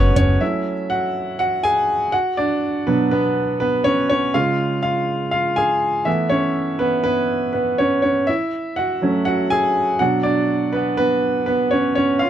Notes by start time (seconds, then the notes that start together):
Already playing: F#1 F#3 G#3 A3 B3 C#4 F#4 G#4 A4 B4 C#5 F#5 G#5 A5
0.16 F#1 C#4 C#5, closed hi-hat, floor tom
0.40 F#3 A3 C#4 E4 E5
0.90 F#4 F#5
1.39 F#4 F#5
1.63 G#4 G#5
2.12 F#4 F#5
2.37 D4 D5
2.87 B2 F#3 B3 D4 B4
3.11 B3 B4
3.60 B3 B4
3.84 C#4 C#5
4.09 C#4 C#5
4.34 C#3 G#3 F4 F5
4.83 F4 F5
5.31 F4 F5
5.56 G#4 G#5
6.05 E3 A3 B3 E4 E5
6.30 C#4 C#5
6.79 B3 B4
7.04 B3 B4
7.53 B3 B4
7.78 C#4 C#5
8.02 C#4 C#5
8.27 E4 E5
8.76 F#4 F#5
9.02 F#3 A3 C#4
9.25 F#4 F#5
9.50 G#4 G#5
9.99 B2 F#3 D4 F#4 F#5
10.23 D4 D5
10.73 B3 B4
10.97 B3 B4
11.46 B3 B4
11.71 C#4 C#5
11.95 C#4 C#5
12.19 F4 F5